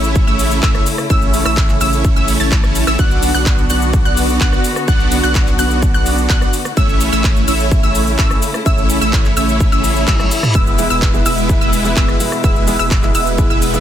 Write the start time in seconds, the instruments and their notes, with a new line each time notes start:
Already playing: sub bass A1, string section C#3 A3 E4, supersaw synth A3 C#4 E4 C#5 E5, synth pluck E6
0.04 cabasa
0.16 kick, cabasa
0.27 sub bass A1, supersaw synth A3 C#4 E4 C#5 E5, synth pluck E6, cabasa
0.39 open hi-hat, cabasa
0.51 cabasa
0.63 sub bass A1, supersaw synth A3 C#4 E4 C#5 E5, synth pluck E6, kick, clap, cabasa
0.75 cross-stick, cabasa
0.86 open hi-hat, cabasa
0.98 cross-stick, cabasa
1.10 sub bass A1, supersaw synth A3 C#4 E4 C#5 E5, synth pluck E6, kick, cabasa
1.22 cabasa
1.34 open hi-hat, cabasa
1.45 sub bass A1, supersaw synth A3 C#4 E4 C#5 E5, synth pluck E6, cross-stick, cabasa
1.57 kick, clap, cabasa
1.69 clap, cabasa
1.81 sub bass A1, supersaw synth A3 C#4 E4 C#5 E5, synth pluck E6, open hi-hat, cabasa
1.93 cabasa
2.05 kick, cabasa
2.16 sub bass A1, supersaw synth A3 C#4 E4 C#5 E5, synth pluck E6, cabasa
2.28 open hi-hat, cabasa
2.40 sub bass A1, supersaw synth A3 C#4 E4 C#5 A5, synth pluck A6, cabasa
2.52 kick, clap, cabasa
2.64 cross-stick, cabasa
2.75 open hi-hat, cabasa
2.87 sub bass A1, supersaw synth A3 C#4 E4 C#5 E5, synth pluck E6, cross-stick, cabasa
2.99 sub bass B1, string section D3 B3 F#4, supersaw synth B3 D4 F#4 D5 F#5, synth pluck F#6, kick, cabasa
3.11 cabasa
3.23 open hi-hat, cabasa
3.34 sub bass B1, supersaw synth B3 D4 F#4 D5 F#5, synth pluck F#6, cabasa
3.46 kick, clap, cabasa
3.58 cabasa
3.70 sub bass B1, supersaw synth B3 D4 F#4 D5 F#5, synth pluck F#6, open hi-hat, cabasa
3.82 cabasa
3.94 kick, cabasa
4.05 sub bass B1, supersaw synth B3 D4 F#4 D5 F#5, synth pluck F#6, cabasa
4.17 open hi-hat, cabasa
4.29 cabasa
4.41 sub bass B1, supersaw synth B3 D4 F#4 D5 F#5, synth pluck F#6, kick, clap, cabasa
4.53 cross-stick, cabasa
4.64 open hi-hat, cabasa
4.76 cross-stick, cabasa
4.88 sub bass B1, supersaw synth B3 D4 F#4 D5 F#5, synth pluck F#6, kick, cabasa
5.00 cabasa
5.12 open hi-hat, cabasa
5.23 sub bass B1, supersaw synth B3 D4 F#4 D5 F#5, synth pluck F#6, cabasa
5.35 kick, clap, cabasa
5.47 clap, cabasa
5.59 sub bass B1, supersaw synth B3 D4 F#4 D5 F#5, synth pluck F#6, open hi-hat, cabasa
5.71 cabasa
5.83 kick, cabasa
5.94 sub bass B1, supersaw synth B3 D4 F#4 D5 F#5, synth pluck F#6, cabasa
6.06 open hi-hat, cabasa
6.18 cabasa
6.30 sub bass B1, supersaw synth B3 D4 F#4 D5 F#5, synth pluck F#6, kick, clap, cabasa
6.42 cross-stick, cabasa
6.53 open hi-hat, cabasa
6.65 cross-stick, cabasa
6.77 sub bass A1, string section C#3 A3 E4, supersaw synth A3 C#4 E4 C#5 E5, synth pluck E6, kick, cabasa
6.89 cabasa
7.01 open hi-hat, cabasa
7.12 sub bass A1, supersaw synth A3 C#4 E4 C#5 E5, synth pluck E6, cabasa
7.24 kick, clap, cabasa
7.36 cabasa
7.48 sub bass A1, supersaw synth A3 C#4 E4 C#5 E5, synth pluck E6, open hi-hat, cabasa
7.60 cabasa
7.71 kick, cabasa
7.83 sub bass A1, supersaw synth A3 C#4 E4 C#5 E5, synth pluck E6, cabasa
7.95 open hi-hat, cabasa
8.07 cabasa
8.19 sub bass A1, supersaw synth A3 C#4 E4 C#5 E5, synth pluck E6, kick, clap, cabasa
8.31 cross-stick, cabasa
8.42 open hi-hat, cabasa
8.54 cross-stick, cabasa
8.66 sub bass A1, supersaw synth A3 C#4 E4 C#5 E5, synth pluck E6, kick, cabasa
8.78 cabasa
8.90 open hi-hat, cabasa
9.01 sub bass A1, supersaw synth A3 C#4 E4 C#5 E5, synth pluck E6, cabasa
9.13 kick, clap, cabasa
9.25 clap, cabasa
9.37 sub bass A1, supersaw synth A3 C#4 E4 C#5 E5, synth pluck E6, open hi-hat, cabasa
9.49 cabasa
9.60 kick, reverse cymbal, cabasa
9.72 sub bass A1, supersaw synth A3 C#4 E4 C#5 E5, synth pluck E6, cabasa
9.84 open hi-hat, cabasa
9.96 cabasa
10.08 sub bass A1, supersaw synth A3 C#4 C#5, synth pluck E6, kick, clap, high tom, cabasa
10.20 cross-stick, high tom, cabasa
10.31 open hi-hat, cabasa
10.43 cross-stick, mid tom, cabasa
10.55 sub bass E1, string section B2 G#3, supersaw synth G#3 B3 E4 B4 E5, synth pluck E6, kick, cabasa
10.67 cabasa
10.78 grand piano E3 G#3 B3 E4, open hi-hat, cabasa
10.90 sub bass E1, supersaw synth G#3 B3 E4 B4 E5, synth pluck E6, cabasa
11.02 kick, clap, cabasa
11.13 grand piano E3 G#3 B3 E4, cabasa
11.26 sub bass E1, supersaw synth G#3 B3 E4 B4 E5, synth pluck E6, open hi-hat, cabasa
11.38 cabasa
11.49 grand piano E3 G#3 B3 E4, kick, cabasa
11.61 sub bass E1, supersaw synth G#3 B3 E4 B4 E5, synth pluck E6, cabasa
11.73 open hi-hat, cabasa
11.84 grand piano E3 G#3 B3 E4, cabasa
11.97 sub bass E1, supersaw synth G#3 B3 E4 B4 E5, synth pluck E6, kick, clap, cabasa
12.08 cross-stick, cabasa
12.20 grand piano E3 G#3 B3 E4, open hi-hat, cabasa
12.32 cross-stick, cabasa
12.44 sub bass E1, supersaw synth G#3 B3 E4 B4 E5, synth pluck E6, kick, cabasa
12.56 cabasa
12.67 grand piano E3 G#3 B3 E4, open hi-hat, cabasa
12.79 sub bass E1, supersaw synth G#3 B3 E4 B4 E5, synth pluck E6, cabasa
12.91 kick, clap, cabasa
13.02 grand piano E3 G#3 B3 E4, clap, cabasa
13.15 sub bass E1, supersaw synth G#3 B3 E4 B4 E5, synth pluck E6, open hi-hat, cabasa
13.27 cabasa
13.38 grand piano E3 G#3 B3 E4, kick, cabasa
13.50 sub bass E1, supersaw synth G#3 B3 E4 B4 E5, synth pluck E6, cabasa
13.62 open hi-hat, cabasa
13.73 grand piano E3 G#3 B3 E4, cabasa